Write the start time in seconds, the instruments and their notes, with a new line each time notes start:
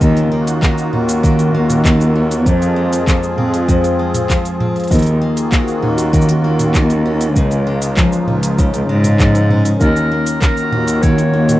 Already playing: steel-string acoustic guitar C#4, accordion D#4 F4
0.01 cello D#2, steel-string acoustic guitar D#3, accordion D#3, kick, shaker
0.05 accordion A#3
0.17 open hi-hat, shaker
0.32 steel-string acoustic guitar A#3
0.40 accordion F#4
0.47 open hi-hat, shaker
0.62 steel-string acoustic guitar A#3, kick, clap, shaker
0.78 shaker
0.93 cello D#2, steel-string acoustic guitar C#4, mid tom
1.09 open hi-hat, shaker
1.23 steel-string acoustic guitar D#3, kick, shaker
1.39 open hi-hat, shaker
1.55 cello D#2, steel-string acoustic guitar A#3
1.70 mid tom, open hi-hat, shaker
1.85 steel-string acoustic guitar A#3, kick, clap, shaker
2.01 shaker
2.16 steel-string acoustic guitar C#4
2.31 open hi-hat, shaker
2.46 steel-string acoustic guitar F2, cello F2, accordion F3, kick, shaker
2.59 accordion G#4, open hi-hat, shaker
2.67 accordion C4
2.76 steel-string acoustic guitar G#3
2.93 open hi-hat, shaker
3.07 steel-string acoustic guitar F3, kick, clap, shaker
3.23 shaker
3.38 cello F2, steel-string acoustic guitar C4, mid tom
3.54 open hi-hat
3.68 steel-string acoustic guitar F2, kick, shaker
3.84 open hi-hat, shaker
3.99 steel-string acoustic guitar G#3
4.14 mid tom, open hi-hat, shaker
4.30 steel-string acoustic guitar F3, kick, clap, shaker
4.45 open hi-hat, shaker
4.60 steel-string acoustic guitar C4, mid tom
4.76 open hi-hat
4.80 open hi-hat
4.84 open hi-hat
4.87 cello D#2, accordion D#3, steel-string acoustic guitar D#3, kick, open hi-hat
4.91 open hi-hat, shaker
4.95 accordion A#3, open hi-hat
4.99 open hi-hat
5.02 open hi-hat
5.06 open hi-hat, shaker
5.22 steel-string acoustic guitar A#3
5.37 open hi-hat, shaker
5.46 accordion F#4
5.52 steel-string acoustic guitar A#3, kick, clap, shaker
5.68 shaker
5.82 cello D#2, steel-string acoustic guitar C#4, mid tom
5.98 open hi-hat, shaker
6.13 steel-string acoustic guitar D#3, kick, shaker
6.21 shaker
6.29 open hi-hat
6.44 cello D#2, steel-string acoustic guitar A#3
6.59 mid tom, open hi-hat, shaker
6.75 steel-string acoustic guitar A#3, kick, clap, shaker
6.90 open hi-hat, shaker
7.06 steel-string acoustic guitar C#4
7.21 open hi-hat, shaker
7.36 cello C#2, accordion C#3, steel-string acoustic guitar C#3, kick, shaker
7.48 accordion G#3, open hi-hat, shaker
7.67 steel-string acoustic guitar G#3
7.82 accordion D#4, open hi-hat, shaker
7.97 steel-string acoustic guitar F3, kick, clap, shaker
8.12 shaker
8.28 cello C#2, steel-string acoustic guitar C#4, mid tom
8.43 open hi-hat, shaker
8.58 steel-string acoustic guitar C#3, kick, shaker
8.74 cello C#2, open hi-hat, shaker
8.89 cello G#2, steel-string acoustic guitar G#3
9.04 mid tom, open hi-hat, shaker
9.20 steel-string acoustic guitar F3, kick, clap, shaker
9.35 open hi-hat, shaker
9.50 steel-string acoustic guitar C#4, mid tom
9.65 open hi-hat, shaker
9.80 cello D#2, steel-string acoustic guitar D#3, accordion D#3, clarinet A#4, kick, shaker
9.96 open hi-hat, shaker
10.07 accordion A#3
10.12 steel-string acoustic guitar A#3
10.27 open hi-hat, shaker
10.41 steel-string acoustic guitar A#3, clarinet A#4, kick, clap, shaker
10.57 accordion F#4, shaker
10.72 cello D#2, steel-string acoustic guitar C#4, mid tom
10.88 open hi-hat, shaker
11.02 steel-string acoustic guitar D#3, clarinet C#5, kick, shaker
11.18 open hi-hat, shaker
11.34 cello D#2, steel-string acoustic guitar A#3
11.49 mid tom, open hi-hat, shaker